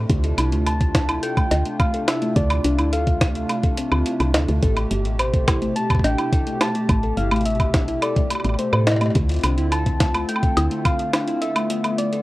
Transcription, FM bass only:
0.10 0.34 D2 loud
0.38 0.54 C2 medium
0.52 1.19 D2 medium
1.51 1.63 D2 medium
2.36 2.60 D2 loud
2.64 2.80 C2 medium
2.79 3.46 D2 medium
3.92 4.04 D2 medium
4.20 4.36 C2 loud
4.34 4.46 D2 medium
4.49 4.60 D2 loud
4.63 4.86 A1 medium
4.91 5.07 G1 medium
5.05 5.72 A1 medium
6.04 6.16 A1 medium
6.89 7.13 A1 loud
7.17 7.33 G1 medium
7.32 7.99 A1 medium
8.45 8.57 A1 medium
8.73 9.12 A2 loud
9.16 9.39 D2 loud
9.44 9.59 C2 medium
9.58 10.25 D2 medium
10.57 10.69 D2 medium

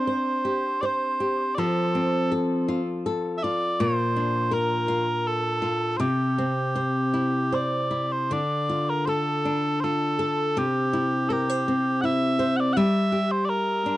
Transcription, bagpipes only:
0.00 0.81 C5 medium
0.81 0.86 D5 medium
0.86 1.55 C5 medium
1.55 2.33 A4 medium
1.55 1.59 D5 medium
3.38 3.43 E5 medium
3.43 3.81 D5 medium
3.81 4.54 C5 medium
4.54 5.27 A#4 medium
5.27 5.97 A4 medium
5.97 7.55 G4 medium
5.97 6.00 C5 medium
7.55 8.12 D5 medium
8.12 8.33 C5 medium
8.33 8.90 D5 medium
8.90 9.06 A#4 medium
9.06 9.80 A4 medium
9.06 9.09 C5 medium
9.80 10.58 A4 medium
9.80 9.84 C5 medium
10.58 11.29 G4 medium
11.29 12.01 G4 medium
11.29 11.32 A4 medium
12.01 12.57 E5 medium
12.01 12.05 F#5 medium
12.57 12.73 D5 medium
12.57 12.60 F#5 medium
12.73 13.31 E5 medium
12.73 12.77 F#5 medium
13.31 13.45 C5 medium
13.45 13.49 D5 medium
13.49 13.97 A#4 medium

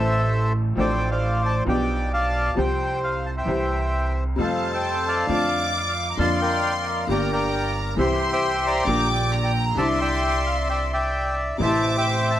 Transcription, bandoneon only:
0.00 0.53 A4 medium
0.00 0.53 C5 medium
0.00 0.52 E5 medium
0.78 1.10 C5 medium
0.78 1.10 D5 medium
0.78 1.09 G5 medium
1.11 1.64 C5 medium
1.11 1.63 D5 medium
1.11 1.42 F5 medium
1.46 1.56 A5 medium
1.69 2.12 D5 medium
1.69 2.10 G5 medium
2.13 2.55 D5 medium
2.13 2.55 F5 medium
2.13 2.59 A5 medium
2.58 3.36 C5 medium
2.58 2.99 G5 medium
3.04 3.26 F5 medium
3.26 3.31 A5 medium
3.37 4.24 C5 medium
3.37 4.24 E5 medium
3.37 4.13 G5 medium
4.41 5.26 A4 medium
4.41 4.72 C5 medium
4.41 4.71 F5 medium
4.74 5.26 C5 medium
4.74 5.05 G5 medium
5.08 5.93 D5 medium
5.08 5.76 F5 medium
5.08 5.50 A5 medium
5.77 5.81 F5 medium
5.88 6.08 F5 medium
6.10 6.19 A#5 medium
6.19 6.40 D5 medium
6.19 6.85 F5 medium
6.19 6.29 A5 loud
6.42 7.05 A#4 medium
6.42 7.05 D5 medium
6.42 6.78 G5 medium
6.81 6.86 G5 medium
6.87 7.07 F5 medium
7.11 7.32 A#4 medium
7.11 7.32 D5 medium
7.11 7.31 G5 medium
7.33 7.94 A#4 medium
7.33 7.95 D5 medium
7.33 7.73 G5 medium
7.99 8.84 G4 medium
7.99 8.31 C5 medium
7.99 8.31 E5 medium
8.33 8.84 C5 medium
8.33 8.84 E5 medium
8.33 8.63 G5 medium
8.67 9.52 D5 medium
8.67 9.32 G5 medium
8.67 9.08 A#5 loud
9.33 9.38 G5 medium
9.44 9.65 G5 medium
9.66 9.76 A#5 loud
9.77 10.00 D5 medium
9.77 10.00 E5 medium
9.77 9.87 A5 loud
10.01 10.68 D5 medium
10.01 10.68 E5 medium
10.01 10.42 G5 medium
10.46 10.56 F5 medium
10.70 10.92 D5 medium
10.70 10.92 E5 medium
10.70 10.80 G5 medium
10.93 11.57 D5 medium
10.93 11.57 E5 medium
10.93 11.35 G5 medium
11.62 11.96 C5 medium
11.62 11.96 E5 medium
11.62 11.96 A5 loud
11.97 12.40 C5 medium
11.97 12.40 E5 medium
11.97 12.31 G5 loud
12.31 12.40 A5 medium

